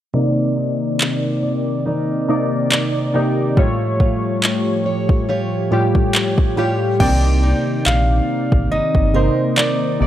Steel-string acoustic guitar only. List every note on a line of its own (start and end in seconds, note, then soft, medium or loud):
0.14 3.57 C4 medium
0.14 1.42 D5 medium
0.57 1.84 D#4 medium
1.43 1.86 D5 medium
1.86 3.13 D#4 medium
1.86 2.27 A#4 medium
1.86 2.70 D5 medium
2.28 3.14 A#4 medium
2.71 3.14 D5 medium
3.14 3.66 D#4 medium
3.14 3.67 A#4 medium
3.14 3.57 D5 medium
3.57 7.00 A3 medium
3.57 4.85 C#5 medium
4.00 5.27 F4 medium
4.86 5.29 C#5 medium
5.29 6.56 F4 medium
5.29 5.71 G4 medium
5.29 6.13 C#5 medium
5.72 6.57 G4 medium
6.14 6.57 C#5 medium
6.57 7.09 F4 medium
6.57 9.14 G4 medium
6.57 7.10 C#5 medium
7.00 10.07 C4 medium
7.43 8.70 D#4 medium
8.72 9.56 D#4 medium
9.14 9.57 A#4 medium
9.57 10.07 D#4 medium
9.57 10.07 A#4 medium
9.57 10.07 D5 medium